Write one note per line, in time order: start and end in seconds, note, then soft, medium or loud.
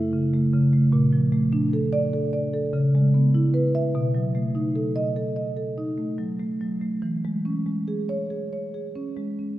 0.00 0.90 F#2 medium
0.00 0.25 A3 medium
0.13 0.46 C#3 soft
0.34 0.66 A3 medium
0.54 0.86 C#3 medium
0.73 0.94 A3 medium
0.93 2.69 A#2 medium
1.13 1.45 F3 medium
1.32 1.65 A3 medium
1.53 1.85 D4 medium
1.73 2.06 A4 medium
1.93 2.25 D5 medium
2.13 2.46 A4 medium
2.33 2.66 D5 medium
2.53 2.74 A4 medium
2.73 3.91 C#3 medium
2.95 3.27 G#3 soft
3.14 3.47 B3 soft
3.35 3.67 E4 medium
3.54 3.86 B4 medium
3.75 3.95 E5 medium
3.95 6.98 B2 medium
4.15 4.47 F#3 soft
4.35 4.67 A3 soft
4.55 4.87 D#4 soft
4.76 5.08 A4 medium
4.96 5.28 D#5 medium
5.16 5.49 A4 soft
5.36 5.69 D#5 medium
5.57 5.89 A4 soft
5.78 6.10 D#4 soft
5.98 6.31 A3 soft
6.18 6.52 F#3 soft
6.39 6.73 A3 soft
6.61 6.94 F#3 soft
6.81 7.03 A3 soft
7.02 9.59 E3 medium
7.25 7.58 G#3 soft
7.45 7.79 C#4 soft
7.66 8.01 G#3 soft
7.88 8.22 G#4 soft
8.09 8.43 C#5 medium
8.30 8.65 G#4 soft
8.53 8.87 C#5 soft
8.74 9.08 G#4 soft
8.96 9.29 C#4 soft
9.17 9.51 G#3 soft
9.39 9.59 C#4 soft